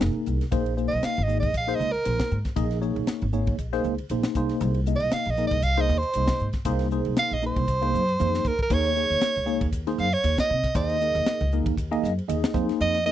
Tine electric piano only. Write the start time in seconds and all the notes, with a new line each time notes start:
0.00 A#3 D#4 G#4 A#4
0.52 A#3 D#4 G#4 C5
0.77 A#3 D#4 G#4 C5
1.28 A#3 D#4 G#4 D#5
1.67 A#3 D#4 G#4 C5
2.05 A#3 D#4 G#4 C5
2.45 G#4 C5
2.56 A#3 D#4 G#4 D#5
2.81 A#3 D#4 G#4 C#5
3.33 A#3 D#4 G#4 C#5
3.73 A#3 D#4 G#4 C5
4.11 A#3 D#4 G#4 C5
4.36 A#3 D#4 G#4 C5
4.87 A#3 D#4 G#4 D#5
5.37 A#3 D#4 G#4 A#4
5.77 A#3 D#4 G#4 C5
6.16 A#3 D#4 G#4 D#5
6.54 G#4 C5
6.65 A#3 D#4 G#4 C5
6.92 A#3 D#4 G#4 C5
7.42 A#3 D#4 G#4 A#4
7.68 G#4 D#5
7.81 A#3 D#4 G#4 C5
8.20 A#3 D#4 G#4 C5
8.71 A#3 D#4 G#4 C#5
8.96 A#3 D#4 G#4 C#5
9.46 A#3 D#4 G#4 C#5
9.73 G#4 C#5
9.87 A#3 D#4 G#4 C5
10.24 A#3 D#4 G#4 C#5
10.64 G#4 C5
10.75 A#3 D#4 G#4 C5
11.01 A#3 D#4 G#4 A#4
11.53 A#3 D#4 G#4 A#4
11.78 G#4 D#5
11.91 A#3 D#4 G#4 D#5
12.17 G#4 C5
12.28 A#3 D#4 G#4 D#5
12.54 A#3 D#4 G#4 C5
13.06 A#3 D#4 G#4 A#4